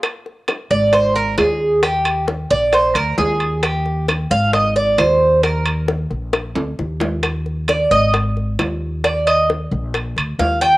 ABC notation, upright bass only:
X:1
M:4/4
L:1/8
Q:1/4=133
K:Eb
V:1 name="Upright bass" clef=bass
z3 A,,,3 E,,2- | E,,3 B,,,2 D,, E,,2- | E,,3 A,,,3 E,,2- | E,,3 B,,,2 D,, E,,2- |
E,,3 A,,,3 E,,2- | E,,3 B,,,2 D,, E,,2 |]